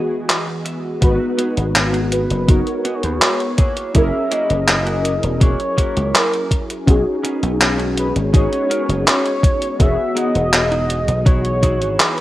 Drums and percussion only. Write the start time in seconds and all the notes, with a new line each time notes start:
0.29 clap, closed hi-hat
0.66 closed hi-hat
1.02 kick, closed hi-hat
1.39 closed hi-hat
1.57 closed hi-hat
1.75 clap, closed hi-hat
1.94 closed hi-hat
2.12 closed hi-hat
2.30 closed hi-hat
2.49 kick, closed hi-hat
2.67 closed hi-hat
2.85 closed hi-hat
3.03 closed hi-hat
3.22 clap, closed hi-hat
3.40 closed hi-hat
3.58 kick, closed hi-hat
3.77 closed hi-hat
3.95 kick, closed hi-hat
4.32 closed hi-hat
4.50 closed hi-hat
4.68 clap, closed hi-hat
4.87 closed hi-hat
5.05 closed hi-hat
5.23 closed hi-hat
5.41 kick, closed hi-hat
5.60 closed hi-hat
5.78 kick, closed hi-hat
5.97 closed hi-hat
6.15 clap, closed hi-hat
6.34 closed hi-hat
6.51 kick, closed hi-hat
6.70 closed hi-hat
6.88 kick, closed hi-hat
7.25 closed hi-hat
7.43 closed hi-hat
7.61 clap, closed hi-hat
7.80 closed hi-hat
7.97 closed hi-hat
8.16 closed hi-hat
8.34 kick, closed hi-hat
8.53 closed hi-hat
8.71 closed hi-hat
8.90 closed hi-hat
9.07 clap, closed hi-hat
9.26 closed hi-hat
9.43 kick, closed hi-hat
9.62 closed hi-hat
9.80 kick, closed hi-hat
10.17 closed hi-hat
10.35 closed hi-hat
10.53 clap, closed hi-hat
10.72 closed hi-hat
10.90 closed hi-hat
11.08 closed hi-hat
11.26 kick, closed hi-hat
11.45 closed hi-hat
11.63 kick, closed hi-hat
11.82 closed hi-hat
12.00 clap, closed hi-hat
12.18 closed hi-hat